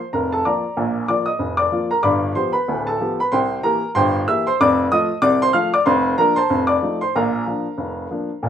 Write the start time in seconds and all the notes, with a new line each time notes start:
Already playing: C5
0.13 F1 F2 A#4 A#5
0.32 A4 A5
0.45 F3 A#3 F4 D5 A#5 D6
0.77 A#1 A#2
1.08 F3 A#3 F4 D5 D6
1.26 D#5 D#6
1.39 F1 F2
1.57 D5 D6
1.72 F3 A#3 F4
1.91 A#4 A#5
2.03 G1 G2 D5 B5 D6
2.35 F3 B3 G4 C5 C6
2.53 B4 B5
2.68 D1 D2
2.87 A4 A5
3.00 F3 B3 G4
3.20 B4 B5
3.32 C2 C3 C5 G5 C6
3.63 E3 A#3 G4 A#4 A#5
3.95 G1 G2 C5 G5 C6
4.28 E3 A#3 G4 E5 E6
4.47 C5 C6
4.61 F1 F2 D5 D6
4.92 F3 A3 F4 D#5 D#6
5.22 C2 C3 D5 D6
5.42 C5 C6
5.53 F3 A3 F4 F5 F6
5.74 D5 D6
5.86 F1 F2 C5 C6
6.18 F3 A#3 D4 A#4 A#5
6.36 C5 A5 C6
6.50 F1 F2
6.67 D5 D6
6.82 F3 A3 D#4
7.01 C5 C6
7.16 A#1 A#2 A#4 F5 A#5
7.47 F3 A#3 D4
7.78 F1 F2
8.11 F3 A#3 D4
8.43 A#1 A#2